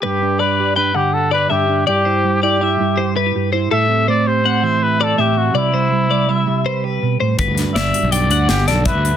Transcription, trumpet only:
\new Staff \with { instrumentName = "Trumpet" } { \time 5/4 \key g \major \tempo 4 = 163 g'4 b'4 b'8 g'8 a'8 b'8 g'4 | g'4. g'2 r4. | e''4 d''8 c''4. b'8 a'8 g'8 fis'8 | e'2. r2 |
r4 e''4 d''4 g'8 a'8 b'4 | }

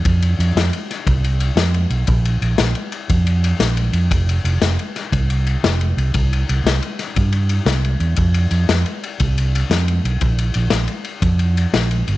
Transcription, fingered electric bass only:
\new Staff \with { instrumentName = "Fingered electric bass" } { \clef bass \time 12/8 \key f \dorian \tempo 4. = 118 f,4 f,8 f,8 r4 c,4. f,4 b,,8 | bes,,4 bes,,8 bes,,8 r4 f,4. bes,,4 f,8 | f,,4 f,,8 f,,8 r4 c,4. f,,4 c,8 | c,4 c,8 c,8 r4 g,4. c,4 e,8 |
f,4 f,8 f,8 r4 c,4. f,4 b,,8 | bes,,4 bes,,8 bes,,8 r4 f,4. bes,,4 g,,8 | }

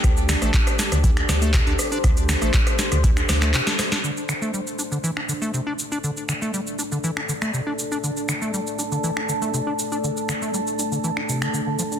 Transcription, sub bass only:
\new Staff \with { instrumentName = "Sub bass" } { \clef bass \time 4/4 \key c \mixolydian \tempo 4 = 120 d,8. a,,16 r8. d,8. d,8. d,16 r8 | d,8. a,,16 r8. d,8. d,8 r4 | r1 | r1 |
r1 | r1 | }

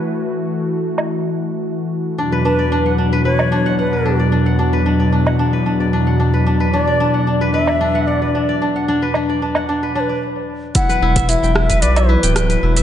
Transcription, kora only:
\new Staff \with { instrumentName = "Kora" } { \time 4/4 \key b \minor \tempo 4 = 112 r1 | d'16 b'16 d'16 d''16 d'16 fis''16 d'16 b'16 b'16 d''16 d'16 fis''16 fis''16 b'16 d'16 d''16 | d'16 fis''16 d'16 b'16 d'16 d''16 d'16 fis''16 d'16 b'16 d'16 d''16 d'16 fis''16 d'16 b'16 | d'16 b'16 d'16 d''16 d'16 fis''16 d'16 b'16 b'16 d''16 d'16 fis''16 fis''16 b'16 d'16 d''16 |
d'16 fis''16 d'16 b'16 d'16 d''16 d'16 fis''16 d'16 b'16 d'16 d''16 r4 | e'16 b'16 e'16 e''16 e'16 g''16 e'16 b'16 b'16 e''16 e'16 g''16 g''16 b'16 e'16 e''16 | }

